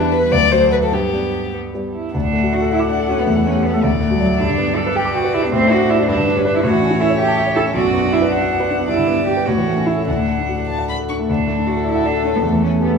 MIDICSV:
0, 0, Header, 1, 4, 480
1, 0, Start_track
1, 0, Key_signature, 2, "major"
1, 0, Tempo, 402955
1, 1096, Time_signature, 6, 3, 24, 8
1, 2555, Tempo, 374298
1, 11195, Tempo, 400534
1, 14075, Tempo, 380711
1, 16211, End_track
2, 0, Start_track
2, 0, Title_t, "Violin"
2, 0, Program_c, 0, 40
2, 0, Note_on_c, 0, 62, 72
2, 142, Note_on_c, 0, 71, 76
2, 160, Note_off_c, 0, 62, 0
2, 380, Note_on_c, 0, 74, 89
2, 398, Note_off_c, 0, 71, 0
2, 616, Note_on_c, 0, 72, 81
2, 634, Note_off_c, 0, 74, 0
2, 853, Note_off_c, 0, 72, 0
2, 859, Note_on_c, 0, 71, 71
2, 906, Note_off_c, 0, 71, 0
2, 991, Note_on_c, 0, 69, 59
2, 1107, Note_on_c, 0, 67, 57
2, 1125, Note_off_c, 0, 69, 0
2, 1834, Note_off_c, 0, 67, 0
2, 2564, Note_on_c, 0, 78, 48
2, 4720, Note_on_c, 0, 74, 54
2, 4740, Note_off_c, 0, 78, 0
2, 6151, Note_off_c, 0, 74, 0
2, 6159, Note_on_c, 0, 74, 57
2, 6874, Note_off_c, 0, 74, 0
2, 6894, Note_on_c, 0, 72, 54
2, 7606, Note_on_c, 0, 71, 59
2, 7625, Note_off_c, 0, 72, 0
2, 8324, Note_on_c, 0, 73, 62
2, 8344, Note_off_c, 0, 71, 0
2, 9740, Note_off_c, 0, 73, 0
2, 9748, Note_on_c, 0, 74, 56
2, 10470, Note_on_c, 0, 78, 54
2, 10489, Note_off_c, 0, 74, 0
2, 11196, Note_off_c, 0, 78, 0
2, 11202, Note_on_c, 0, 74, 50
2, 11898, Note_on_c, 0, 73, 51
2, 11916, Note_off_c, 0, 74, 0
2, 12620, Note_off_c, 0, 73, 0
2, 12628, Note_on_c, 0, 78, 38
2, 13293, Note_off_c, 0, 78, 0
2, 13356, Note_on_c, 0, 81, 52
2, 13579, Note_off_c, 0, 81, 0
2, 13601, Note_on_c, 0, 83, 57
2, 13697, Note_off_c, 0, 83, 0
2, 13839, Note_on_c, 0, 85, 47
2, 13934, Note_off_c, 0, 85, 0
2, 14077, Note_on_c, 0, 69, 53
2, 16186, Note_off_c, 0, 69, 0
2, 16211, End_track
3, 0, Start_track
3, 0, Title_t, "Grand piano"
3, 0, Program_c, 1, 0
3, 0, Control_c, 1, 64, 127
3, 0, Note_on_c, 1, 55, 45
3, 0, Note_on_c, 1, 64, 45
3, 0, Note_on_c, 1, 71, 49
3, 338, Note_off_c, 1, 55, 0
3, 343, Note_off_c, 1, 64, 0
3, 345, Note_off_c, 1, 71, 0
3, 384, Note_on_c, 1, 38, 61
3, 404, Control_c, 1, 64, 0
3, 600, Control_c, 1, 64, 127
3, 609, Note_off_c, 1, 38, 0
3, 620, Note_on_c, 1, 57, 41
3, 624, Note_on_c, 1, 66, 43
3, 632, Note_on_c, 1, 74, 46
3, 1051, Note_off_c, 1, 57, 0
3, 1053, Note_off_c, 1, 66, 0
3, 1057, Note_off_c, 1, 74, 0
3, 1094, Note_on_c, 1, 43, 49
3, 1119, Control_c, 1, 64, 0
3, 1330, Control_c, 1, 64, 127
3, 1333, Note_off_c, 1, 43, 0
3, 1342, Note_on_c, 1, 59, 34
3, 1348, Note_on_c, 1, 67, 37
3, 1353, Note_on_c, 1, 74, 39
3, 2026, Note_off_c, 1, 59, 0
3, 2028, Note_off_c, 1, 67, 0
3, 2031, Note_off_c, 1, 74, 0
3, 2076, Note_on_c, 1, 59, 31
3, 2081, Note_on_c, 1, 67, 32
3, 2086, Note_on_c, 1, 74, 33
3, 2508, Note_off_c, 1, 59, 0
3, 2510, Note_off_c, 1, 67, 0
3, 2512, Note_off_c, 1, 74, 0
3, 2553, Note_on_c, 1, 38, 52
3, 2577, Control_c, 1, 64, 0
3, 2679, Note_on_c, 1, 45, 38
3, 2792, Control_c, 1, 64, 127
3, 2797, Note_on_c, 1, 57, 39
3, 2873, Note_off_c, 1, 45, 0
3, 2922, Note_on_c, 1, 66, 40
3, 2992, Note_off_c, 1, 57, 0
3, 3044, Note_on_c, 1, 74, 41
3, 3113, Note_off_c, 1, 66, 0
3, 3159, Note_on_c, 1, 69, 48
3, 3234, Note_off_c, 1, 74, 0
3, 3279, Note_on_c, 1, 78, 49
3, 3351, Note_off_c, 1, 69, 0
3, 3392, Note_on_c, 1, 86, 46
3, 3471, Note_off_c, 1, 78, 0
3, 3509, Note_on_c, 1, 78, 46
3, 3588, Note_off_c, 1, 86, 0
3, 3635, Note_on_c, 1, 69, 45
3, 3708, Note_off_c, 1, 78, 0
3, 3751, Note_on_c, 1, 66, 45
3, 3832, Note_off_c, 1, 69, 0
3, 3871, Note_on_c, 1, 57, 37
3, 3950, Note_off_c, 1, 66, 0
3, 3959, Note_off_c, 1, 38, 0
3, 3995, Note_on_c, 1, 40, 56
3, 3998, Note_off_c, 1, 57, 0
3, 4027, Control_c, 1, 64, 0
3, 4118, Note_on_c, 1, 52, 39
3, 4240, Note_on_c, 1, 57, 47
3, 4245, Control_c, 1, 64, 127
3, 4312, Note_off_c, 1, 52, 0
3, 4358, Note_on_c, 1, 67, 40
3, 4433, Note_off_c, 1, 57, 0
3, 4478, Note_on_c, 1, 73, 40
3, 4551, Note_off_c, 1, 67, 0
3, 4596, Note_on_c, 1, 69, 51
3, 4670, Note_off_c, 1, 73, 0
3, 4694, Note_off_c, 1, 40, 0
3, 4714, Note_on_c, 1, 38, 59
3, 4717, Note_off_c, 1, 69, 0
3, 4741, Control_c, 1, 64, 0
3, 4836, Note_on_c, 1, 45, 43
3, 4909, Control_c, 1, 64, 127
3, 4950, Note_on_c, 1, 57, 47
3, 5026, Note_off_c, 1, 45, 0
3, 5071, Note_on_c, 1, 66, 45
3, 5144, Note_off_c, 1, 57, 0
3, 5192, Note_on_c, 1, 74, 50
3, 5264, Note_off_c, 1, 66, 0
3, 5325, Note_on_c, 1, 69, 48
3, 5386, Note_off_c, 1, 74, 0
3, 5411, Note_off_c, 1, 38, 0
3, 5441, Note_off_c, 1, 69, 0
3, 5445, Note_on_c, 1, 43, 61
3, 5462, Control_c, 1, 64, 0
3, 5563, Note_on_c, 1, 50, 47
3, 5678, Note_on_c, 1, 59, 51
3, 5702, Control_c, 1, 64, 127
3, 5753, Note_off_c, 1, 50, 0
3, 5803, Note_on_c, 1, 67, 43
3, 5871, Note_off_c, 1, 59, 0
3, 5927, Note_on_c, 1, 74, 49
3, 5994, Note_off_c, 1, 67, 0
3, 6043, Note_on_c, 1, 71, 55
3, 6117, Note_off_c, 1, 74, 0
3, 6167, Note_on_c, 1, 79, 58
3, 6237, Note_off_c, 1, 71, 0
3, 6286, Note_on_c, 1, 86, 58
3, 6360, Note_off_c, 1, 79, 0
3, 6405, Note_on_c, 1, 79, 55
3, 6480, Note_off_c, 1, 86, 0
3, 6529, Note_on_c, 1, 71, 55
3, 6600, Note_off_c, 1, 79, 0
3, 6647, Note_on_c, 1, 67, 54
3, 6722, Note_off_c, 1, 71, 0
3, 6768, Note_on_c, 1, 59, 49
3, 6841, Note_off_c, 1, 67, 0
3, 6852, Note_off_c, 1, 43, 0
3, 6888, Note_on_c, 1, 45, 70
3, 6890, Note_off_c, 1, 59, 0
3, 6916, Control_c, 1, 64, 0
3, 7013, Note_on_c, 1, 57, 51
3, 7124, Note_on_c, 1, 62, 54
3, 7131, Control_c, 1, 64, 127
3, 7203, Note_off_c, 1, 57, 0
3, 7243, Note_on_c, 1, 66, 50
3, 7318, Note_off_c, 1, 62, 0
3, 7365, Note_on_c, 1, 74, 54
3, 7437, Note_off_c, 1, 66, 0
3, 7484, Note_on_c, 1, 66, 58
3, 7558, Note_off_c, 1, 74, 0
3, 7585, Note_off_c, 1, 45, 0
3, 7604, Note_on_c, 1, 43, 68
3, 7605, Note_off_c, 1, 66, 0
3, 7633, Control_c, 1, 64, 0
3, 7724, Note_on_c, 1, 50, 50
3, 7835, Control_c, 1, 64, 127
3, 7837, Note_on_c, 1, 62, 55
3, 7914, Note_off_c, 1, 50, 0
3, 7958, Note_on_c, 1, 67, 46
3, 8030, Note_off_c, 1, 62, 0
3, 8077, Note_on_c, 1, 71, 57
3, 8150, Note_off_c, 1, 67, 0
3, 8196, Note_on_c, 1, 74, 51
3, 8268, Note_off_c, 1, 71, 0
3, 8294, Note_off_c, 1, 43, 0
3, 8314, Note_on_c, 1, 45, 68
3, 8315, Note_off_c, 1, 74, 0
3, 8343, Control_c, 1, 64, 0
3, 8429, Note_on_c, 1, 52, 49
3, 8540, Control_c, 1, 64, 127
3, 8545, Note_on_c, 1, 61, 52
3, 8620, Note_off_c, 1, 52, 0
3, 8657, Note_on_c, 1, 64, 52
3, 8738, Note_off_c, 1, 61, 0
3, 8778, Note_on_c, 1, 69, 52
3, 8854, Note_off_c, 1, 64, 0
3, 8905, Note_on_c, 1, 73, 59
3, 8975, Note_off_c, 1, 69, 0
3, 9021, Note_on_c, 1, 76, 54
3, 9097, Note_off_c, 1, 73, 0
3, 9140, Note_on_c, 1, 81, 52
3, 9215, Note_off_c, 1, 76, 0
3, 9261, Note_on_c, 1, 76, 55
3, 9334, Note_off_c, 1, 81, 0
3, 9377, Note_on_c, 1, 73, 49
3, 9454, Note_off_c, 1, 76, 0
3, 9501, Note_on_c, 1, 64, 52
3, 9572, Note_off_c, 1, 73, 0
3, 9622, Note_on_c, 1, 61, 47
3, 9695, Note_off_c, 1, 64, 0
3, 9701, Note_off_c, 1, 45, 0
3, 9734, Note_on_c, 1, 35, 67
3, 9744, Note_off_c, 1, 61, 0
3, 9769, Control_c, 1, 64, 0
3, 9857, Note_on_c, 1, 42, 47
3, 9981, Note_on_c, 1, 59, 47
3, 9986, Control_c, 1, 64, 127
3, 10055, Note_off_c, 1, 42, 0
3, 10105, Note_on_c, 1, 62, 47
3, 10177, Note_off_c, 1, 59, 0
3, 10223, Note_on_c, 1, 66, 48
3, 10297, Note_off_c, 1, 62, 0
3, 10346, Note_on_c, 1, 71, 52
3, 10415, Note_off_c, 1, 66, 0
3, 10458, Note_on_c, 1, 74, 48
3, 10537, Note_off_c, 1, 71, 0
3, 10588, Note_on_c, 1, 78, 55
3, 10654, Note_off_c, 1, 74, 0
3, 10714, Note_on_c, 1, 74, 49
3, 10780, Note_off_c, 1, 78, 0
3, 10833, Note_on_c, 1, 71, 48
3, 10904, Note_off_c, 1, 74, 0
3, 10957, Note_on_c, 1, 62, 51
3, 11025, Note_off_c, 1, 71, 0
3, 11077, Note_on_c, 1, 59, 41
3, 11144, Note_off_c, 1, 35, 0
3, 11149, Note_off_c, 1, 62, 0
3, 11194, Note_on_c, 1, 43, 54
3, 11196, Note_off_c, 1, 59, 0
3, 11217, Control_c, 1, 64, 0
3, 11313, Note_on_c, 1, 50, 40
3, 11427, Note_on_c, 1, 59, 46
3, 11437, Control_c, 1, 64, 127
3, 11494, Note_off_c, 1, 50, 0
3, 11543, Note_on_c, 1, 62, 39
3, 11610, Note_off_c, 1, 59, 0
3, 11662, Note_on_c, 1, 67, 39
3, 11728, Note_off_c, 1, 62, 0
3, 11781, Note_on_c, 1, 71, 43
3, 11848, Note_off_c, 1, 67, 0
3, 11871, Note_off_c, 1, 43, 0
3, 11896, Note_off_c, 1, 71, 0
3, 11904, Note_on_c, 1, 45, 53
3, 11916, Control_c, 1, 64, 0
3, 12020, Note_on_c, 1, 52, 39
3, 12124, Control_c, 1, 64, 127
3, 12137, Note_on_c, 1, 57, 38
3, 12208, Note_off_c, 1, 52, 0
3, 12255, Note_on_c, 1, 61, 40
3, 12327, Note_off_c, 1, 57, 0
3, 12375, Note_on_c, 1, 64, 41
3, 12448, Note_off_c, 1, 61, 0
3, 12499, Note_on_c, 1, 69, 34
3, 12569, Note_off_c, 1, 64, 0
3, 12602, Note_off_c, 1, 45, 0
3, 12618, Note_on_c, 1, 38, 46
3, 12620, Note_off_c, 1, 69, 0
3, 12643, Control_c, 1, 64, 0
3, 12745, Note_on_c, 1, 45, 35
3, 12811, Control_c, 1, 64, 127
3, 12865, Note_on_c, 1, 57, 37
3, 12938, Note_off_c, 1, 45, 0
3, 12994, Note_on_c, 1, 62, 33
3, 13059, Note_off_c, 1, 57, 0
3, 13115, Note_on_c, 1, 66, 35
3, 13185, Note_off_c, 1, 62, 0
3, 13235, Note_on_c, 1, 69, 38
3, 13306, Note_off_c, 1, 66, 0
3, 13358, Note_on_c, 1, 74, 42
3, 13426, Note_off_c, 1, 69, 0
3, 13475, Note_on_c, 1, 78, 41
3, 13548, Note_off_c, 1, 74, 0
3, 13603, Note_on_c, 1, 74, 38
3, 13668, Note_off_c, 1, 78, 0
3, 13723, Note_on_c, 1, 69, 34
3, 13793, Note_off_c, 1, 74, 0
3, 13841, Note_on_c, 1, 62, 37
3, 13914, Note_off_c, 1, 69, 0
3, 13963, Note_on_c, 1, 57, 33
3, 14030, Note_off_c, 1, 62, 0
3, 14031, Note_off_c, 1, 38, 0
3, 14077, Note_off_c, 1, 57, 0
3, 14082, Note_on_c, 1, 38, 52
3, 14101, Control_c, 1, 64, 0
3, 14197, Note_on_c, 1, 45, 35
3, 14297, Control_c, 1, 64, 127
3, 14317, Note_on_c, 1, 57, 39
3, 14392, Note_off_c, 1, 45, 0
3, 14438, Note_on_c, 1, 62, 37
3, 14513, Note_off_c, 1, 57, 0
3, 14558, Note_on_c, 1, 66, 38
3, 14635, Note_off_c, 1, 62, 0
3, 14679, Note_on_c, 1, 69, 43
3, 14755, Note_off_c, 1, 66, 0
3, 14791, Note_on_c, 1, 74, 44
3, 14875, Note_off_c, 1, 69, 0
3, 14916, Note_on_c, 1, 78, 41
3, 14991, Note_off_c, 1, 74, 0
3, 15035, Note_on_c, 1, 74, 38
3, 15112, Note_off_c, 1, 78, 0
3, 15150, Note_on_c, 1, 69, 40
3, 15231, Note_off_c, 1, 74, 0
3, 15275, Note_on_c, 1, 62, 41
3, 15348, Note_off_c, 1, 69, 0
3, 15391, Note_on_c, 1, 57, 38
3, 15470, Note_off_c, 1, 62, 0
3, 15483, Note_off_c, 1, 38, 0
3, 15509, Note_on_c, 1, 40, 55
3, 15516, Note_off_c, 1, 57, 0
3, 15545, Control_c, 1, 64, 0
3, 15634, Note_on_c, 1, 52, 36
3, 15745, Note_on_c, 1, 57, 40
3, 15778, Control_c, 1, 64, 127
3, 15828, Note_off_c, 1, 52, 0
3, 15867, Note_on_c, 1, 61, 37
3, 15942, Note_off_c, 1, 57, 0
3, 15986, Note_on_c, 1, 67, 36
3, 16063, Note_off_c, 1, 61, 0
3, 16101, Note_on_c, 1, 69, 43
3, 16181, Note_off_c, 1, 67, 0
3, 16206, Note_off_c, 1, 40, 0
3, 16211, Note_off_c, 1, 69, 0
3, 16211, End_track
4, 0, Start_track
4, 0, Title_t, "Cello"
4, 0, Program_c, 2, 42
4, 0, Note_on_c, 2, 55, 55
4, 329, Note_off_c, 2, 55, 0
4, 382, Note_on_c, 2, 54, 60
4, 1092, Note_on_c, 2, 59, 48
4, 1110, Note_off_c, 2, 54, 0
4, 1778, Note_off_c, 2, 59, 0
4, 1822, Note_on_c, 2, 59, 51
4, 1918, Note_off_c, 2, 59, 0
4, 2079, Note_on_c, 2, 55, 42
4, 2315, Note_off_c, 2, 55, 0
4, 2327, Note_on_c, 2, 64, 50
4, 2554, Note_off_c, 2, 64, 0
4, 2568, Note_on_c, 2, 62, 73
4, 3050, Note_on_c, 2, 66, 72
4, 3070, Note_off_c, 2, 62, 0
4, 3285, Note_off_c, 2, 66, 0
4, 3290, Note_on_c, 2, 64, 82
4, 3384, Note_off_c, 2, 64, 0
4, 3521, Note_on_c, 2, 62, 67
4, 3770, Note_on_c, 2, 61, 77
4, 3790, Note_off_c, 2, 62, 0
4, 3899, Note_on_c, 2, 59, 62
4, 3919, Note_off_c, 2, 61, 0
4, 4007, Note_on_c, 2, 57, 78
4, 4026, Note_off_c, 2, 59, 0
4, 4238, Note_on_c, 2, 61, 71
4, 4258, Note_off_c, 2, 57, 0
4, 4476, Note_on_c, 2, 59, 74
4, 4496, Note_off_c, 2, 61, 0
4, 4598, Note_off_c, 2, 59, 0
4, 4613, Note_on_c, 2, 57, 73
4, 4658, Note_off_c, 2, 57, 0
4, 4723, Note_on_c, 2, 57, 78
4, 4826, Note_off_c, 2, 57, 0
4, 5095, Note_on_c, 2, 55, 64
4, 5191, Note_on_c, 2, 54, 81
4, 5210, Note_off_c, 2, 55, 0
4, 5433, Note_off_c, 2, 54, 0
4, 5443, Note_on_c, 2, 62, 83
4, 5912, Note_on_c, 2, 69, 86
4, 5931, Note_off_c, 2, 62, 0
4, 6158, Note_on_c, 2, 67, 83
4, 6178, Note_off_c, 2, 69, 0
4, 6391, Note_off_c, 2, 67, 0
4, 6399, Note_on_c, 2, 66, 80
4, 6646, Note_on_c, 2, 64, 86
4, 6665, Note_off_c, 2, 66, 0
4, 6774, Note_on_c, 2, 62, 85
4, 6794, Note_off_c, 2, 64, 0
4, 6882, Note_off_c, 2, 62, 0
4, 6890, Note_on_c, 2, 60, 103
4, 7129, Note_on_c, 2, 66, 91
4, 7148, Note_off_c, 2, 60, 0
4, 7369, Note_on_c, 2, 64, 93
4, 7389, Note_off_c, 2, 66, 0
4, 7488, Note_off_c, 2, 64, 0
4, 7507, Note_on_c, 2, 62, 83
4, 7611, Note_off_c, 2, 62, 0
4, 7619, Note_on_c, 2, 62, 92
4, 7978, Note_on_c, 2, 61, 75
4, 7998, Note_off_c, 2, 62, 0
4, 8068, Note_off_c, 2, 61, 0
4, 8076, Note_on_c, 2, 62, 87
4, 8194, Note_off_c, 2, 62, 0
4, 8204, Note_on_c, 2, 64, 86
4, 8250, Note_off_c, 2, 64, 0
4, 8314, Note_on_c, 2, 66, 95
4, 8788, Note_on_c, 2, 64, 89
4, 8808, Note_off_c, 2, 66, 0
4, 9009, Note_off_c, 2, 64, 0
4, 9017, Note_on_c, 2, 67, 96
4, 9489, Note_off_c, 2, 67, 0
4, 9495, Note_on_c, 2, 69, 85
4, 9593, Note_off_c, 2, 69, 0
4, 9736, Note_on_c, 2, 66, 99
4, 10224, Note_on_c, 2, 64, 85
4, 10243, Note_off_c, 2, 66, 0
4, 10452, Note_off_c, 2, 64, 0
4, 10459, Note_on_c, 2, 62, 75
4, 10937, Note_off_c, 2, 62, 0
4, 11192, Note_on_c, 2, 64, 78
4, 11622, Note_off_c, 2, 64, 0
4, 11652, Note_on_c, 2, 67, 70
4, 11881, Note_on_c, 2, 66, 73
4, 11899, Note_off_c, 2, 67, 0
4, 12367, Note_on_c, 2, 64, 69
4, 12385, Note_off_c, 2, 66, 0
4, 12614, Note_off_c, 2, 64, 0
4, 12619, Note_on_c, 2, 62, 60
4, 13336, Note_off_c, 2, 62, 0
4, 14087, Note_on_c, 2, 62, 69
4, 14563, Note_on_c, 2, 66, 72
4, 14582, Note_off_c, 2, 62, 0
4, 14802, Note_off_c, 2, 66, 0
4, 14810, Note_on_c, 2, 64, 70
4, 15046, Note_on_c, 2, 62, 67
4, 15065, Note_off_c, 2, 64, 0
4, 15278, Note_off_c, 2, 62, 0
4, 15285, Note_on_c, 2, 61, 67
4, 15333, Note_off_c, 2, 61, 0
4, 15420, Note_on_c, 2, 59, 57
4, 15465, Note_off_c, 2, 59, 0
4, 15523, Note_on_c, 2, 57, 65
4, 15763, Note_on_c, 2, 61, 64
4, 15782, Note_off_c, 2, 57, 0
4, 15995, Note_off_c, 2, 61, 0
4, 16003, Note_on_c, 2, 59, 62
4, 16124, Note_on_c, 2, 57, 58
4, 16143, Note_off_c, 2, 59, 0
4, 16211, Note_off_c, 2, 57, 0
4, 16211, End_track
0, 0, End_of_file